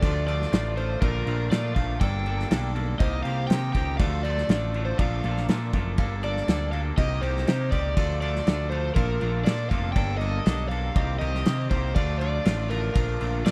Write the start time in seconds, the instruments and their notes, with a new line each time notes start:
Already playing: overdriven electric guitar D5
0.01 picked electric bass D2, clean electric guitar D3 F3 A3 D4 F4, string machine F4 D5 A5 D6, synth bell A4, kick, crash
0.27 clean electric guitar D3 F3 A3 D4 F4, overdriven electric guitar D5, crash
0.42 snare
0.51 picked electric bass A1, clean electric guitar D3 F3 A3 D4 F4, snare, crash
0.76 clean electric guitar D3 F3 A3 D4 F4, overdriven electric guitar C5, crash
1.01 picked electric bass A#1, clean electric guitar A#2 D3 F3 A3 D4 F4, overdriven electric guitar A#4, string machine A#4 D6, synth bell D5, kick, crash
1.26 picked electric bass A#1, clean electric guitar A#2 D3 F3 A3 D4 F4, crash
1.51 picked electric bass A#2, clean electric guitar A#2 D3 F3 A3 D4 F4, overdriven electric guitar D5, snare, crash
1.75 picked electric bass A#1, clean electric guitar A#2 D3 F3 A3 D4 F4, overdriven electric guitar F5, kick, crash
2.00 picked electric bass G1, clean electric guitar G2 D3 G3 A#3 D4 A4, string machine G4, synth bell D5, overdriven electric guitar G5, kick, crash
2.26 clean electric guitar G2 D3 G3 A#3 D4 A4, crash
2.40 snare
2.51 picked electric bass B1, clean electric guitar G2 D3 G3 A#3 D4 A4, snare, crash
2.76 clean electric guitar G2 D3 G3 A#3 D4 A4, crash
2.99 picked electric bass C2, clean electric guitar C3 D#3 A#3 C4 D#4 G4, string machine C5 A#5 D#6, synth bell C5, overdriven electric guitar D#5, kick, crash
3.23 picked electric bass C2, clean electric guitar C3 D#3 A#3 C4 D#4, overdriven electric guitar F5, crash
3.27 clean electric guitar G4
3.47 picked electric bass C3, clean electric guitar C3 D#3 A#3 D#4, overdriven electric guitar G5, snare, crash
3.51 clean electric guitar C4 G4
3.73 picked electric bass C#2, clean electric guitar C3 D#3 A#3 C4 D#4, overdriven electric guitar G5, kick, crash
3.77 clean electric guitar G4
3.97 picked electric bass D2, clean electric guitar D3 F3 A3 D4 F4 A4, string machine F4 D5 A5 D6, synth bell D5, overdriven electric guitar F5, kick, crash
4.23 clean electric guitar D3 F3 A3 D4 F4 A4, overdriven electric guitar D5, crash
4.38 snare
4.49 picked electric bass A1, clean electric guitar D3 F3 A3 D4 F4 A4, snare, crash
4.74 clean electric guitar D3 F3 A3 D4 F4 A4, crash
4.85 overdriven electric guitar C5
4.98 picked electric bass A#1, clean electric guitar A#2 F3 A3 A#3 D4 F4 A4, string machine A#4, synth bell D5, overdriven electric guitar F5, kick, crash
5.24 picked electric bass A#1, clean electric guitar A#2 F3 A3 A#3 D4 F4 A4, crash
5.37 snare
5.48 picked electric bass A#2, clean electric guitar A#2 F3 A3 A#3 D4 F4 A4, snare, crash
5.73 picked electric bass F#1, clean electric guitar A#2 F3 A3 A#3 D4 F4 A4, kick, crash
5.98 picked electric bass G1, clean electric guitar G2 D3 G3 A#3 D4 A4, string machine G4 A5, synth bell F5, kick, crash
6.23 clean electric guitar G2 D3 G3 A#3 D4 A4, overdriven electric guitar D5, crash
6.37 snare
6.48 picked electric bass D2, clean electric guitar G2 D3 G3 A#3 D4 A4, snare, crash
6.72 clean electric guitar G2 D3 G3 A#3 D4 A4, overdriven electric guitar F5, crash
6.97 picked electric bass C2, clean electric guitar C3 D#3 A#3 C4 D#4 G4, string machine C5 A#5 D#6, overdriven electric guitar D#5, synth bell D#5, kick, crash
7.21 picked electric bass C2, clean electric guitar C3 D#3 A#3 C4 D#4 G4, overdriven electric guitar C5, crash
7.37 snare
7.47 clean electric guitar C3 D#3 A#3 C4 D#4 G4, picked electric bass C3, snare, crash
7.71 picked electric bass C#2, clean electric guitar C3 D#3 A#3 C4 D#4 G4, overdriven electric guitar D5, kick, crash
7.96 picked electric bass D2, clean electric guitar D3 F3 A3 D4 F4 A4, string machine F4 D5 A5 D6, synth bell F5, kick, crash
8.21 clean electric guitar D3 F3 A3 D4 F4 A4, overdriven electric guitar D5, crash
8.36 snare
8.46 picked electric bass D2, clean electric guitar D3 F3 A3 D4 F4 A4, snare, crash
8.70 clean electric guitar D3 F3 A3 D4 F4 A4, overdriven electric guitar C5, crash
8.95 picked electric bass A#1, clean electric guitar A#2 F3 A3 A#3 D4 F4 A4, overdriven electric guitar A#4, string machine A#4, synth bell F5, kick, crash
9.20 picked electric bass A#1, clean electric guitar A#2 F3 A3 A#3 D4 F4 A4, crash
9.45 clean electric guitar A#2 F3 A3 A#3 D4 F4 A4, picked electric bass A#2, overdriven electric guitar D5, snare, crash
9.69 picked electric bass F1, clean electric guitar A#2 F3 A3 A#3 D4 F4 A4, overdriven electric guitar F5, kick, crash
9.92 picked electric bass G1, clean electric guitar G2 D3 G3 D4, synth bell D5, overdriven electric guitar G5, kick, crash
9.96 clean electric guitar A#3 A4, string machine G4
10.17 clean electric guitar G2 D3 G3, overdriven electric guitar D#5, crash
10.22 clean electric guitar A#3 D4 A4
10.45 picked electric bass B1, clean electric guitar G2 D3 G3 A#3 D4 A4, snare, crash
10.69 clean electric guitar G2 D3 G3 A#3 D4 A4, overdriven electric guitar F5, crash
10.95 picked electric bass C2, clean electric guitar C3 D#3 A#3 C4 G4, string machine C5 A#5 D#6, synth bell D#5, kick, crash
11.19 picked electric bass C2, clean electric guitar C3 D#3 A#3 C4 G4, overdriven electric guitar D#5, crash
11.35 snare
11.45 clean electric guitar C3 D#3 A#3 C4 G4, picked electric bass C3, snare, crash
11.70 picked electric bass C2, clean electric guitar C3 D#3 A#3 C4 G4, overdriven electric guitar C5, kick, crash
11.95 picked electric bass D2, clean electric guitar D3 F3 A3 D4 F4, string machine F4 D5 A5 D6, overdriven electric guitar D5, synth bell F5, kick, crash
12.19 clean electric guitar D3 F3 A3 D4 F4, overdriven electric guitar D5, crash
12.44 picked electric bass A1, clean electric guitar D3 F3 A3 D4 F4, snare, crash
12.69 clean electric guitar D3 F3 A3 D4 F4, overdriven electric guitar A#4, crash
12.94 picked electric bass A#1, clean electric guitar A#2 D3 F3 A3 D4 F4, string machine A#4 A5, synth bell F5, kick, crash
13.19 picked electric bass A#1, clean electric guitar A#2 D3 F3 A3 D4 F4, crash
13.45 clean electric guitar A#2 D3 F3 A3 D4 F4, picked electric bass A#2, overdriven electric guitar D5, snare, crash